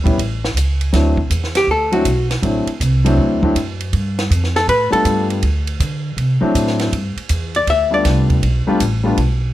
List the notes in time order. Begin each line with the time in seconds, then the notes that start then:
0.04 A#1 G3 B3 C#4 E4, kick, ride
0.18 A1, kick, ride
0.45 snare
0.54 C#2, hi-hat pedal, ride
0.81 ride
0.93 D2 F#3 A3 C4 D4 E4, kick, snare, ride
1.17 kick
1.30 E2, kick, hi-hat pedal, ride
1.44 snare
1.55 G4, snare, ride
1.67 D2, kick
1.71 A4
1.92 F#3 A3 C4 D4 E4 F#4, ride
2.05 B1, kick, hi-hat pedal, ride
2.31 snare, ride
2.42 A1 F#3 A3 C4 D4 E4, kick, ride
2.66 muted upright bass stroke, ride
2.80 C2, kick, hi-hat pedal, ride
3.04 F#3 A3 C4 D4 E4, ride
3.18 D2, kick
3.42 F#3 A3 C4 D4 E4, kick
3.55 F#2, kick, hi-hat pedal, ride
3.81 ride
3.93 G2, kick, ride
4.19 snare, ride
4.30 F2, kick, hi-hat pedal, ride
4.44 snare
4.56 A4, snare, ride
4.68 A2 B4, kick, ride
4.90 G3 A3 B3 D4 F4 A4, muted upright bass stroke, ride
5.05 G2, kick, hi-hat pedal, ride
5.30 ride
5.43 D2, kick, ride
5.67 ride
5.80 D3, kick, hi-hat pedal, ride
6.17 C3, kick, ride
6.41 F#3 A3 C4 D4 E4, muted upright bass stroke
6.55 A2, kick, hi-hat pedal, ride
6.67 snare
6.79 snare, ride
6.92 G2, kick, ride
7.16 muted upright bass stroke, ride
7.29 E2, kick, hi-hat pedal, ride
7.55 D5, ride
7.67 D2 E5, kick, ride
7.90 G3 A3 B3 D4 F4 D5
8.04 C2, kick, snare, hi-hat pedal, ride
8.30 kick, ride
8.43 B1, kick, ride
8.67 G3 A3 B3 D4 F4, muted upright bass stroke
8.80 A1, kick, hi-hat pedal, ride
9.03 G3 A3 B3 D4 F4
9.17 B1, kick, ride